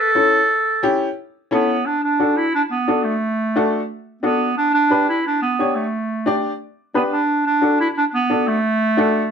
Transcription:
0.00 clarinet A4
0.15 upright piano C#4 E4 A4
0.83 upright piano C#4 E4 G4
1.51 clarinet B3, upright piano C#4 E4 A4
1.86 clarinet D4
2.04 clarinet D4
2.20 upright piano D4 F#4 A4
2.37 clarinet E4
2.55 clarinet D4
2.71 clarinet B3
2.88 upright piano D4 F#4 A4
3.04 clarinet A3
3.56 upright piano D4 F#4 A4
4.23 clarinet B3, upright piano D4 F#4 A4
4.57 clarinet D4
4.74 clarinet D4
4.90 upright piano D4 G4 B4
5.09 clarinet E4
5.27 clarinet D4
5.42 clarinet B3
5.59 upright piano D4 G4 C#5
5.76 clarinet A3
6.26 upright piano D4 G4 D5
6.94 clarinet B3, upright piano D4 G4 B4
7.12 clarinet D4
7.47 clarinet D4
7.62 upright piano D4 F#4 A4
7.80 clarinet E4
7.98 clarinet D4
8.14 clarinet B3
8.30 upright piano D4 F#4 A4
8.48 clarinet A3
8.97 upright piano D4 F#4 A4

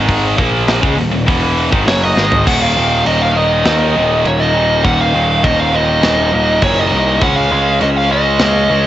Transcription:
Already playing: picked electric bass G#1, distorted electric guitar G#2 D#3 G#3
0.08 kick, open hi-hat
0.37 picked electric bass A#1, distorted electric guitar A#2 F3 A#3, kick
0.68 snare, open hi-hat
0.81 picked electric bass C#2, distorted electric guitar C#3 G#3, kick
0.96 picked electric bass D#1, distorted electric guitar D#2 A#2, open hi-hat
1.11 picked electric bass D#1, distorted electric guitar D#2 A#2
1.26 picked electric bass E1, distorted electric guitar E2 B2 E3, kick, open hi-hat
1.57 open hi-hat
1.71 picked electric bass G#1, distorted electric guitar G#2 D#3, kick
1.86 picked electric bass F#1, distorted electric guitar F#2 C#3 F#3, lead electric guitar C#5, snare, open hi-hat
2.03 lead electric guitar D#5
2.16 picked electric bass G#1, distorted electric guitar G#2 D#3 G#3, snare
2.32 floor tom
2.46 picked electric bass D#1, distorted electric guitar D#2 A#2 D#3, lead electric guitar F#5, kick, crash
2.62 lead electric guitar F5
2.76 picked electric bass D#1, distorted electric guitar D#2 A#2 D#3
3.05 picked electric bass D#1, distorted electric guitar D#2 A#2 D#3, lead electric guitar D#5, crash
3.22 lead electric guitar F5
3.35 distorted electric guitar D#2 A#2 D#3, lead electric guitar D#5
3.65 distorted electric guitar D#2 A#2 D#3, picked electric bass D#2, snare, crash
3.95 picked electric bass D#1, distorted electric guitar D#2 A#2 D#3
4.25 picked electric bass D#1, distorted electric guitar D#2 A#2 D#3, lead electric guitar C#5, crash
4.40 lead electric guitar D#5
4.54 distorted electric guitar D#2 A#2 D#3
4.83 picked electric bass D#1, distorted electric guitar D#2 A#2 D#3, lead electric guitar F#5, kick, crash
5.01 lead electric guitar F5
5.13 picked electric bass D#1, distorted electric guitar D#2 A#2 D#3
5.42 picked electric bass D#1, distorted electric guitar D#2 A#2 D#3, lead electric guitar D#5, kick, crash
5.60 lead electric guitar F5
5.72 distorted electric guitar D#2 A#2 D#3, lead electric guitar D#5
6.01 picked electric bass D#1, distorted electric guitar D#2 A#2 D#3, snare, crash
6.32 picked electric bass D#1, distorted electric guitar D#2 A#2 D#3
6.62 picked electric bass F#1, distorted electric guitar D#2 A#2 D#3, lead electric guitar C#5, kick, crash
6.79 lead electric guitar D#5
6.91 picked electric bass C2, distorted electric guitar D#2 A#2 D#3
7.21 picked electric bass C#2, distorted electric guitar C#3 G#3 C#4, lead electric guitar F#5, kick, crash
7.36 lead electric guitar F5
7.51 picked electric bass C#2, distorted electric guitar C#3 G#3 C#4
7.80 picked electric bass C#2, distorted electric guitar C#3 G#3 C#4, lead electric guitar D#5, crash
7.96 lead electric guitar F5
8.10 distorted electric guitar C#3 G#3 C#4, lead electric guitar D#5
8.39 picked electric bass C#2, distorted electric guitar C#3 G#3 C#4, snare, crash
8.70 picked electric bass C#2, distorted electric guitar C#3 G#3 C#4

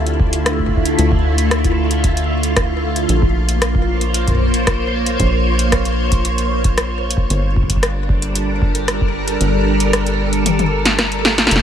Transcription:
Already playing: analog synth bass D2, string machine D3 A3 E4 F4 G4
0.07 closed hi-hat
0.20 kick
0.33 closed hi-hat
0.46 cross-stick, closed hi-hat
0.59 kick
0.68 kick
0.77 kick
0.85 closed hi-hat
0.99 analog synth bass D2, closed hi-hat
1.12 kick
1.38 closed hi-hat
1.51 cross-stick, closed hi-hat
1.64 kick, closed hi-hat
1.91 closed hi-hat
2.04 kick, closed hi-hat
2.17 closed hi-hat
2.43 closed hi-hat
2.56 kick, cross-stick, closed hi-hat
2.96 closed hi-hat
3.09 analog synth bass A#1, string machine A#3, closed hi-hat
3.22 kick
3.39 string machine C5
3.48 string machine C#5, closed hi-hat
3.62 cross-stick, closed hi-hat
3.75 kick
4.01 closed hi-hat
4.14 closed hi-hat
4.28 kick, closed hi-hat
4.31 kick
4.34 kick
4.37 kick
4.41 kick
4.44 kick
4.47 kick
4.51 kick, closed hi-hat
4.67 kick, cross-stick, closed hi-hat
5.06 closed hi-hat
5.20 analog synth bass A#1, kick, closed hi-hat
5.59 closed hi-hat
5.72 kick, cross-stick, closed hi-hat
5.85 closed hi-hat
6.12 kick, closed hi-hat
6.25 closed hi-hat
6.38 closed hi-hat
6.64 kick, closed hi-hat
6.78 cross-stick, closed hi-hat
7.11 closed hi-hat
7.17 kick
7.30 analog synth bass G1, string machine G3, closed hi-hat
7.42 string machine D4
7.57 kick
7.63 kick
7.70 string machine A4, kick, closed hi-hat
7.76 kick
7.83 cross-stick, closed hi-hat
7.90 string machine A#4
8.09 kick
8.22 closed hi-hat
8.35 closed hi-hat
8.62 kick
8.75 closed hi-hat
8.88 cross-stick, closed hi-hat
9.01 kick
9.28 closed hi-hat
9.41 analog synth bass G1, closed hi-hat
9.80 closed hi-hat
9.93 cross-stick, closed hi-hat
10.06 closed hi-hat
10.33 closed hi-hat
10.46 closed hi-hat, high tom
10.59 closed hi-hat, high tom
10.85 snare, closed hi-hat
10.99 cross-stick, snare, closed hi-hat
11.12 closed hi-hat
11.25 snare
11.38 snare, closed hi-hat
11.47 snare
11.51 analog synth bass F1, string machine F3, closed hi-hat
11.56 string machine C4, snare

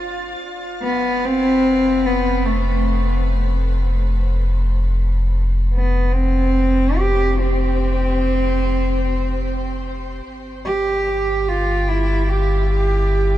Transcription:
Already playing: sub bass G1
0.39 sub bass F1
0.83 cello B3
1.25 cello C4
2.06 cello B3
2.46 cello A3
5.74 cello B3
6.12 cello C4
6.98 cello G4
7.39 cello C4
10.27 sub bass G1
10.65 cello G4
11.48 cello F4
11.88 cello E4
12.29 cello G4
12.71 cello G4

